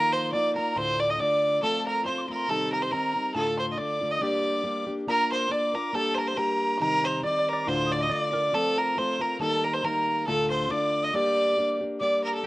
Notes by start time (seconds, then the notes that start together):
Already playing: D#3 F3 A#3 D#4 F4 A#4 A#5
0.13 C5 C6
0.32 F3 A#3 D#4 F4 D5 D6
0.56 A#3 D#4 F4 A#4 A#5
0.76 D2 A2 D3 A3 D4 F4 C5 C6
1.00 D5 D6
1.10 D#5 D#6
1.18 D3 A3 D4 F4 D5 D6
1.63 F3 A3 C4 F4 A4 A5
1.87 A#4 A#5
2.05 F3 A3 C4 F4 C5 C6
2.18 C6 D6
2.29 A3 C4 F4 A#4 A#5
2.36 C6
2.48 C3 D#3 G3 C4 D#4 A4 A5
2.73 A#4 A#5
2.82 C5 C6
2.91 D#3 G3 C4 D#4 A#4 A#5
3.16 G3 C4
3.34 D2 A2 D3 A3 D4 F4 A4 A5
3.58 C5 C6
3.72 D#5
3.77 D3 A3 D4 F4 D5 D6
4.01 D3 A3 D4 F4
4.11 D#5 D#6
4.21 G3 A#3 D4 G4 D5 D6
4.63 G3 A#3 D4 G4
4.86 A#3 D4 G4
5.07 A#3 D4 F4 A#4 A#5
5.32 C5 C6
5.49 A#3 D4 F4 A#4 D5 D6
5.73 D4 F4 A#4 A#5
5.93 G3 A#3 D4 G4 A4 A5
6.15 C5 A#5
6.19 A#4
6.27 C5 C6
6.36 G3 A#3 D4 G4 A#4 A#5
6.77 C3 D#3 G3 A#4 C6
6.82 C4 D#4 A#5
7.04 C5 C6
7.23 D#3 G3 C4 D#4 D5 D6
7.39 D5
7.49 A#4
7.53 D5
7.63 D2 D6
7.67 A2 D3 A3 D4 F4 C5 C6
7.86 D#6
7.92 D5 D6
8.01 D#5
8.09 D3 A3 D4 F4 D5 D6
8.32 D3 A3 D4 F4 A#4
8.53 F3 A3 C4 F4 A4 A5
8.78 A#4 A#5
8.97 F3 A3 C4 F4 C5 C6
9.20 A3 C4 F4 A#4 A#5
9.39 D#3 G3 A#3 D#4 A4 A5
9.64 A#4 A#5
9.73 C5 C6
9.83 D#3 G3 A#3 D#4 A#4 A#5
10.26 D2 A2 D3 A3 D4 F4 A4 A5
10.50 C5 C6
10.69 D3 A3 D4 F4 D5 D6
11.03 D#5 D#6
11.12 G3 A#3 D4 G4 D5 D6
11.57 G3 A#3 D4 G4
11.80 A#3 D4 G4
11.99 G3 A#3 D4 G4 D5 D6
12.23 A#4 A#5
12.34 A4 A5
12.43 G3 G5